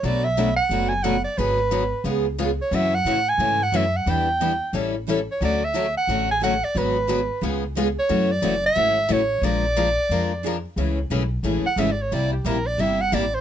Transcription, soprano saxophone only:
X:1
M:4/4
L:1/8
Q:"Swing" 1/4=179
K:A
V:1 name="Soprano saxophone"
d e2 f2 g f d | B4 z3 c | e f2 g2 f e f | =g4 z3 c |
d e2 f2 g f d | B4 z3 c- | c d2 e3 c2 | d6- d z |
z4 z f (3e d c | d =G _B d e f d =c |]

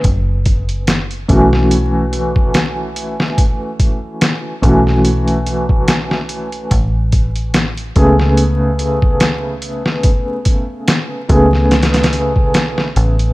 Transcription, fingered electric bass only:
X:1
M:4/4
L:1/8
Q:"Swing 16ths" 1/4=72
K:F#m
V:1 name="Fingered electric bass" clef=bass
F,,,3 B,,,4- B,,,- | B,,,3 B,,,4- B,,, | A,,,3 C,,4- C,,- | C,,3 C,,3 B,,, A,,, |]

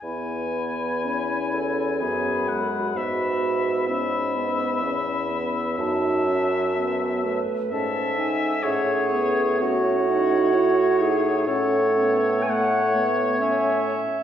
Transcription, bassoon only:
X:1
M:3/4
L:1/8
Q:1/4=63
K:E
V:1 name="Bassoon" clef=bass
E,,4 F,,2 | G,,4 E,,2 | F,,3 z G,,2 | A,,6 |
A,,4- A,, z |]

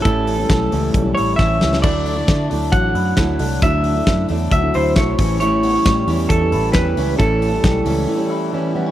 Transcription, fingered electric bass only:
X:1
M:4/4
L:1/8
Q:1/4=135
K:Ador
V:1 name="Fingered electric bass" clef=bass
A,,,2 B,,, ^C,, B,,, A,,, A,,, C,, | D,,2 D, D,, A,,, F,, D,, C,, | D,,2 F,, E,, D,, D,, B,,, A,,,- | A,,,2 A,, E,, E,, A,,, E,, ^C,, |
A,,,2 B,,, ^C,, z4 |]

